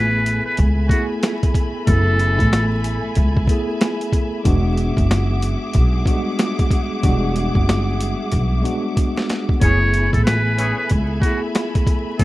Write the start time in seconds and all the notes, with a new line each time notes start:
Already playing: A1 A3 B3 E4 G#4 B4 E5 G#5 B5
0.26 closed hi-hat
0.45 B4
0.57 C#2, kick, closed hi-hat
0.88 A3 B3 F#4, kick, closed hi-hat
0.92 E4 G#4
1.23 snare, closed hi-hat
1.43 kick, closed hi-hat
1.54 kick, closed hi-hat
1.85 F#1 A3 B3 E4 A4 G#5, kick, closed hi-hat
2.19 closed hi-hat
2.39 A1, kick, closed hi-hat
2.53 snare, closed hi-hat
2.84 closed hi-hat
3.15 C#2, kick, closed hi-hat
3.37 kick
3.47 A3 B3 E4 G#4, kick, closed hi-hat
3.81 snare, closed hi-hat
4.01 closed hi-hat
4.12 kick, closed hi-hat
4.44 E1 G#3 B3 D4 F#4 G#4 F#5 D6, kick, closed hi-hat
4.77 closed hi-hat
4.97 F#1, kick, closed hi-hat
5.11 snare, closed hi-hat
5.42 closed hi-hat
5.73 B1, kick, closed hi-hat
6.04 G3 B3 D4 F#4, kick, closed hi-hat
6.11 G#3
6.39 snare, closed hi-hat
6.59 kick, closed hi-hat
6.71 kick, closed hi-hat
7.01 E1 G3 B3 D4 F#4, kick, closed hi-hat
7.08 G#3
7.36 closed hi-hat
7.55 F#1, kick
7.69 snare, closed hi-hat
8.01 closed hi-hat
8.32 B1, kick, closed hi-hat
8.62 G#3 B3 D4 F#4, closed hi-hat
8.97 kick, closed hi-hat
9.17 snare
9.29 snare, closed hi-hat
9.49 kick
9.59 F#1 E3 A3 B3 C#4 E4 G#4 C#5 E5 G#5 B5, kick, closed hi-hat
9.94 closed hi-hat
10.13 A1 A4, kick, closed hi-hat
10.25 B4, snare, closed hi-hat
10.57 E3 C#4 G#4, closed hi-hat
10.78 B4
10.89 C#2, kick, closed hi-hat
11.21 A3 B3 E4 F#4, kick, closed hi-hat
11.26 G#4
11.55 snare, closed hi-hat
11.75 kick, closed hi-hat
11.87 kick, closed hi-hat
12.18 F#1 E3 A3 B3 C#4 E4 A4 G#5, kick, closed hi-hat